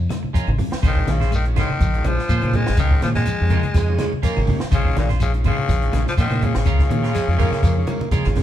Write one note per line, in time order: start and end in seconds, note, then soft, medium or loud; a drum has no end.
0.09 0.26 G3 medium
0.09 snare soft
0.09 closed hi-hat medium
0.09 high conga medium
0.09 claves medium
0.09 shekere soft
0.23 muted clean electric guitar stroke soft
0.23 high conga medium
0.33 0.50 F3 medium
0.33 0.49 G#3 medium
0.33 0.50 C#4 loud
0.33 0.50 F4 medium
0.33 0.50 A#4 loud
0.33 kick medium
0.33 closed hi-hat medium
0.33 shekere medium
0.47 0.57 G#1 medium
0.47 high conga medium
0.47 claves medium
0.58 0.70 C#3 medium
0.58 0.75 G3 medium
0.58 muted clean electric guitar stroke soft
0.58 open hi-hat medium
0.58 low conga medium
0.58 shekere soft
0.71 muted clean electric guitar stroke soft
0.71 muted fingered electric bass stroke soft
0.71 snare medium
0.71 closed hi-hat soft
0.82 1.04 A#1 loud
0.82 0.99 C#3 medium
0.82 0.98 G#3 medium
0.82 0.98 C#4 medium
0.82 0.98 F4 medium
0.82 0.99 C5 medium
0.82 kick loud
0.82 closed hi-hat medium
0.82 claves medium
0.82 shekere medium
0.87 1.12 D#3 loud
0.96 1.21 D#3 medium
0.96 1.21 G#3 medium
0.96 1.21 C#4 medium
0.96 1.22 F4 loud
0.96 kick medium
1.07 1.61 A#1 loud
1.07 1.33 C#3 medium
1.07 1.23 D#3 medium
1.07 muted clean electric guitar stroke soft
1.07 snare soft
1.07 closed hi-hat medium
1.07 high conga loud
1.07 shekere soft
1.20 1.31 C#4 soft
1.20 1.31 F4 soft
1.20 1.31 C5 medium
1.20 snare soft
1.20 closed hi-hat soft
1.20 low conga medium
1.31 1.45 D#3 medium
1.31 1.47 G#3 medium
1.31 muted clean electric guitar stroke soft
1.31 closed hi-hat medium
1.31 claves medium
1.31 shekere loud
1.45 1.70 D#3 medium
1.45 1.70 G#3 medium
1.45 1.71 C#4 medium
1.45 1.71 F4 medium
1.45 muted clean electric guitar stroke soft
1.45 closed hi-hat soft
1.56 1.72 C#3 medium
1.56 2.08 D#3 loud
1.56 1.69 G#3 medium
1.56 1.69 C#4 medium
1.56 1.69 F4 medium
1.56 1.68 C5 medium
1.56 kick medium
1.56 snare soft
1.56 closed hi-hat medium
1.56 low conga medium
1.56 shekere soft
1.69 muted clean electric guitar stroke soft
1.69 muted fingered electric bass stroke soft
1.69 high conga medium
1.69 claves medium
1.80 2.02 A#1 medium
1.80 1.96 F3 medium
1.80 kick medium
1.80 closed hi-hat medium
1.80 high conga medium
1.80 shekere medium
1.94 2.18 D#3 medium
1.94 2.19 G#3 medium
1.94 2.19 C#4 medium
1.94 2.19 F4 medium
1.94 muted clean electric guitar stroke soft
1.94 closed hi-hat soft
2.04 2.17 A#1 loud
2.04 2.57 F3 loud
2.04 2.21 G3 medium
2.04 closed hi-hat medium
2.04 high conga loud
2.04 claves medium
2.04 shekere soft
2.18 muted clean electric guitar stroke soft
2.18 snare soft
2.29 2.41 A#2 medium
2.29 2.45 F3 medium
2.29 2.44 G#3 medium
2.29 2.45 C#4 medium
2.29 2.45 F4 medium
2.29 2.45 C5 medium
2.29 kick medium
2.29 closed hi-hat medium
2.29 shekere loud
2.41 2.65 A#2 medium
2.41 2.68 D#3 medium
2.41 2.68 G#3 medium
2.41 closed hi-hat soft
2.41 high conga medium
2.41 claves medium
2.45 2.69 C#4 medium
2.45 2.68 F4 medium
2.53 2.70 G3 medium
2.53 2.78 G#3 loud
2.53 muted clean electric guitar stroke soft
2.53 closed hi-hat medium
2.53 low conga medium
2.53 shekere soft
2.66 2.78 G#1 medium
2.66 muted clean electric guitar stroke soft
2.66 snare medium
2.66 closed hi-hat soft
2.77 2.99 C#2 loud
2.77 2.94 C#3 loud
2.77 3.01 D#3 loud
2.77 2.93 G#3 medium
2.77 2.93 C#4 medium
2.77 2.94 F4 medium
2.77 2.94 A#4 medium
2.77 kick loud
2.77 closed hi-hat medium
2.77 claves medium
2.77 shekere loud
2.91 3.16 D#3 medium
2.91 3.16 G#3 medium
2.91 3.17 C#4 medium
2.91 3.17 F4 loud
2.91 kick medium
3.02 3.24 A#2 loud
3.02 3.19 D#3 medium
3.02 3.09 F3 loud
3.02 snare soft
3.02 closed hi-hat medium
3.02 high conga medium
3.02 shekere soft
3.15 4.09 G#3 loud
3.15 3.26 C#4 soft
3.15 3.26 F4 medium
3.15 snare soft
3.15 closed hi-hat soft
3.15 low conga medium
3.25 3.43 F3 medium
3.25 muted clean electric guitar stroke soft
3.25 closed hi-hat medium
3.25 claves medium
3.25 shekere medium
3.39 3.62 F2 medium
3.39 3.64 D#3 medium
3.39 3.65 G#3 medium
3.39 3.65 C#4 medium
3.39 3.65 G4 medium
3.39 muted clean electric guitar stroke soft
3.50 3.67 C#3 medium
3.50 3.64 G#3 medium
3.50 3.63 C#4 medium
3.50 3.62 F4 medium
3.50 3.62 A#4 medium
3.50 kick medium
3.50 closed hi-hat medium
3.50 low conga medium
3.50 shekere soft
3.63 muted clean electric guitar stroke soft
3.63 closed hi-hat soft
3.63 high conga medium
3.63 claves medium
3.74 3.96 F2 loud
3.74 3.91 F3 medium
3.74 3.97 G#3 loud
3.74 kick medium
3.74 snare soft
3.74 closed hi-hat medium
3.74 high conga medium
3.74 shekere medium
3.88 4.13 D#3 loud
3.88 4.13 G#3 medium
3.88 4.13 C#4 medium
3.88 4.13 F4 loud
3.88 muted clean electric guitar stroke medium
3.99 4.15 G3 medium
3.99 4.10 G#3 medium
3.99 snare soft
3.99 closed hi-hat medium
3.99 high conga loud
3.99 claves medium
3.99 shekere soft
4.12 muted clean electric guitar stroke medium
4.12 high conga medium
4.22 4.39 F3 medium
4.22 4.39 G#3 medium
4.22 4.59 A#3 loud
4.22 4.39 C#4 medium
4.22 4.39 F4 loud
4.22 4.39 A#4 medium
4.22 kick medium
4.22 closed hi-hat medium
4.22 shekere medium
4.37 4.47 G#1 medium
4.37 4.61 D#3 loud
4.37 4.61 G#3 medium
4.37 4.61 C#4 medium
4.37 4.62 G4 loud
4.37 high conga medium
4.37 claves medium
4.47 4.60 C#3 medium
4.47 4.63 G3 medium
4.47 muted clean electric guitar stroke soft
4.47 open hi-hat medium
4.47 high conga medium
4.47 low conga medium
4.47 shekere soft
4.60 muted clean electric guitar stroke soft
4.60 muted fingered electric bass stroke soft
4.60 snare medium
4.60 closed hi-hat soft
4.71 4.93 A#1 loud
4.71 4.87 C#3 loud
4.71 4.96 C#3 loud
4.71 4.87 G#3 medium
4.71 4.87 C#4 medium
4.71 4.88 F4 medium
4.71 4.88 C5 medium
4.71 kick medium
4.71 closed hi-hat medium
4.71 claves medium
4.71 shekere medium
4.85 5.10 D#3 medium
4.85 5.09 G#3 medium
4.85 5.10 C#4 medium
4.85 5.10 F4 loud
4.85 kick medium
4.96 5.51 A#1 loud
4.96 5.09 A#2 medium
4.96 5.12 D#3 medium
4.96 muted clean electric guitar stroke soft
4.96 snare soft
4.96 closed hi-hat medium
4.96 high conga loud
4.96 shekere soft
5.09 5.20 C#4 soft
5.09 5.19 F4 medium
5.09 5.20 C5 medium
5.09 snare soft
5.09 closed hi-hat soft
5.09 low conga medium
5.20 5.33 C#3 medium
5.20 5.36 F3 medium
5.20 muted clean electric guitar stroke soft
5.20 closed hi-hat medium
5.20 claves medium
5.20 shekere loud
5.33 5.58 D#3 medium
5.33 5.58 G#3 medium
5.33 5.58 C#4 medium
5.33 5.59 F4 medium
5.33 muted clean electric guitar stroke soft
5.33 closed hi-hat soft
5.44 5.60 C#3 medium
5.44 6.04 C#3 loud
5.44 5.58 G#3 medium
5.44 5.57 C#4 medium
5.44 5.57 F4 medium
5.44 5.57 C5 medium
5.44 kick medium
5.44 closed hi-hat medium
5.44 low conga medium
5.44 shekere soft
5.57 muted clean electric guitar stroke soft
5.57 high conga medium
5.57 claves medium
5.69 5.91 A#1 medium
5.69 5.85 F3 medium
5.69 kick medium
5.69 snare soft
5.69 closed hi-hat medium
5.69 shekere medium
5.82 6.07 D#3 medium
5.82 6.07 G#3 medium
5.82 6.08 C#4 medium
5.82 6.08 F4 medium
5.82 muted clean electric guitar stroke soft
5.82 closed hi-hat soft
5.93 6.05 A#1 loud
5.93 6.09 G3 medium
5.93 snare soft
5.93 closed hi-hat medium
5.93 high conga loud
5.93 claves medium
5.93 shekere soft
6.06 6.13 F3 loud
6.06 muted clean electric guitar stroke soft
6.06 snare soft
6.06 high conga medium
6.17 6.29 A#2 medium
6.17 6.45 D#3 loud
6.17 6.34 F3 medium
6.17 6.33 G#3 medium
6.17 6.33 C#4 medium
6.17 6.33 F4 medium
6.17 6.33 C5 medium
6.17 kick medium
6.17 closed hi-hat medium
6.17 shekere medium
6.30 6.52 A#2 medium
6.30 6.56 D#3 medium
6.30 6.56 G#3 medium
6.30 6.56 C#4 medium
6.30 6.57 F4 medium
6.30 closed hi-hat soft
6.30 high conga medium
6.30 claves medium
6.42 6.56 C#3 loud
6.42 6.58 G3 medium
6.42 muted clean electric guitar stroke soft
6.42 closed hi-hat soft
6.42 low conga medium
6.42 shekere soft
6.54 6.65 G#1 medium
6.54 8.33 C#3 loud
6.54 muted clean electric guitar stroke soft
6.54 snare medium
6.54 closed hi-hat soft
6.65 6.87 C#2 loud
6.65 6.81 C#3 loud
6.65 6.81 G#3 medium
6.65 6.82 C#4 medium
6.65 6.82 F4 medium
6.65 6.82 A#4 medium
6.65 kick loud
6.65 closed hi-hat medium
6.65 claves medium
6.65 shekere medium
6.79 7.04 D#3 medium
6.79 7.04 G#3 medium
6.79 7.05 C#4 medium
6.79 7.05 F4 loud
6.79 kick medium
6.79 snare soft
6.90 7.11 A#2 medium
6.90 7.06 D#3 medium
6.90 muted clean electric guitar stroke soft
6.90 closed hi-hat medium
6.90 high conga loud
6.90 shekere soft
7.03 7.13 C#4 soft
7.03 7.14 F4 medium
7.03 7.14 A#4 medium
7.03 snare soft
7.03 closed hi-hat soft
7.14 7.30 F3 medium
7.14 7.25 G#3 loud
7.14 muted clean electric guitar stroke soft
7.14 snare soft
7.14 closed hi-hat medium
7.14 claves medium
7.14 shekere medium
7.28 7.49 F2 medium
7.28 7.52 D#3 medium
7.28 7.53 G#3 medium
7.28 7.53 C#4 medium
7.28 7.53 F4 loud
7.28 muted clean electric guitar stroke medium
7.38 7.55 C#3 medium
7.38 7.52 G#3 loud
7.38 7.61 A#3 loud
7.38 7.51 C#4 medium
7.38 7.51 F4 medium
7.38 7.51 A#4 medium
7.38 kick medium
7.38 closed hi-hat medium
7.38 low conga medium
7.38 shekere soft
7.51 muted clean electric guitar stroke medium
7.51 snare soft
7.51 closed hi-hat soft
7.51 high conga medium
7.51 claves medium
7.62 7.84 F2 loud
7.62 7.79 F3 medium
7.62 7.74 A#3 loud
7.62 kick medium
7.62 snare soft
7.62 closed hi-hat medium
7.62 high conga medium
7.62 shekere medium
7.76 8.01 D#3 loud
7.76 8.02 G#3 medium
7.76 8.02 C#4 medium
7.76 8.02 F4 loud
7.76 muted clean electric guitar stroke medium
7.87 8.04 G3 medium
7.87 8.10 A#3 loud
7.87 closed hi-hat medium
7.87 high conga loud
7.87 claves medium
7.87 shekere soft
8.01 muted clean electric guitar stroke medium
8.01 high conga medium
8.11 8.28 F3 medium
8.11 8.43 G#3 medium
8.11 8.27 G#3 medium
8.11 8.27 C#4 medium
8.11 8.27 F4 medium
8.11 8.27 A#4 loud
8.11 kick medium
8.11 closed hi-hat medium
8.11 high conga loud
8.11 shekere medium
8.24 8.35 G#1 medium
8.24 8.43 D#3 loud
8.24 8.43 G#3 medium
8.24 8.43 C#4 medium
8.24 8.43 F4 loud
8.24 snare soft
8.24 low conga medium
8.24 claves medium
8.35 8.43 C#3 medium
8.35 8.43 G3 medium
8.35 muted clean electric guitar stroke soft
8.35 snare soft
8.35 open hi-hat medium
8.35 low conga loud
8.35 shekere soft